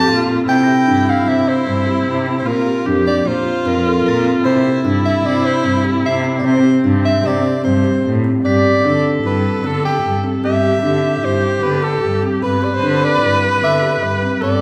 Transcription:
Already playing: A4 A5
0.08 A#2 F4
0.29 C4
0.47 C3 C4 E4 G5 G6
0.63 A#6
0.68 G4
0.87 G2 D4
1.10 F5
1.26 C3 E4 E5
1.48 C5
1.66 G2 C4
1.87 G4
2.05 C3
2.26 C4
2.39 C5
2.45 A#2 A#3 F4 A#4
2.66 G4
2.85 F2 D4 G4
3.07 D5
3.25 A#2 F4 C5
3.65 F2 C4 A#4
3.85 A4
4.05 A#2 A#4 A6
4.24 C4
4.44 C3 C4 E4 C5
4.64 G4
4.84 G2 D4
5.05 E5
5.24 C3 E4 D5
5.45 C5
5.64 G2 C4
5.84 G4
6.04 C3 E5 C7
6.24 C4
6.38 D5
6.44 C3 C4 C5
6.64 G4
6.84 G2 D4
7.05 E5
7.24 C3 G4 D5
7.64 G2 C4 C5
7.84 G4
8.04 A2
8.24 C4
8.44 G2 B3 G4 D5 B6
8.65 G4
8.84 D3 D4 A4
9.24 G2 E4 B4
9.64 D3 B3 A4
9.84 G4
10.03 G2
10.23 C4
10.43 G2 B3 G4 E5
10.63 G4
10.82 D3 D4 G4
11.22 G2 E4 C5
11.63 D3 B3 B4
11.83 G4 A4
12.02 G2
12.23 C4
12.42 G2 B3 B4
12.62 G4 D5
12.74 C5
12.82 D3 D4
13.04 D5
13.22 G2 E4
13.62 D3 B3 E5 D6
13.82 G4
14.01 G2 B4
14.22 C4
14.41 G2 B3 A4 D5

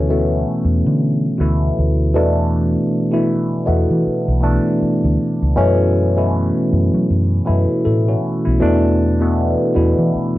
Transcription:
Already playing: D2 B2 E3 A3 C#4
0.09 B2 E3 A3 B3
0.65 E2
0.86 D3
1.38 D2 B2 E3 A3 E4
1.79 D2
2.14 E2 B2 E3 A3 D4
3.12 B2 E3 A3 E4
3.65 E2 B2 E3 A3 B3
3.90 E3
4.07 muted fingered electric bass stroke
4.28 B1
4.41 B2 E3 A3 D4
4.82 muted fingered electric bass stroke
5.04 D2
5.42 C#2
5.55 F#2 B2 E3 A3 C#4
6.16 B2 E3 A3 E4
6.73 F#2
6.94 F#3
7.10 F#2
7.45 F#2 B2 E3 A3 E4
7.85 A2 E4 A4
8.08 C#4 F#4
8.45 B1 B3 E4
8.60 B2 E3 A3 D4
9.20 B2 E3 A3 B3
9.75 E2 B2 E3 A3 E4
9.98 E3
10.15 muted fingered electric bass stroke

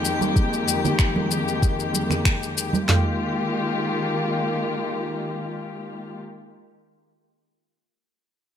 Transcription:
Already playing: F2 D#3 G#3 A#3 G4 G5
0.05 shaker
0.21 high conga, shaker
0.36 kick, shaker
0.53 shaker
0.68 shaker
0.85 low conga, shaker
0.99 finger snap, kick, shaker
1.16 high conga
1.31 shaker
1.48 shaker
1.62 kick, shaker
1.80 shaker
1.94 high conga, shaker
2.10 finger snap, low conga, shaker
2.25 finger snap, kick, shaker
2.43 shaker
2.58 shaker
2.73 high conga, shaker
2.88 D#3 G#3 A#3 F4 G4, snare, clap, floor tom

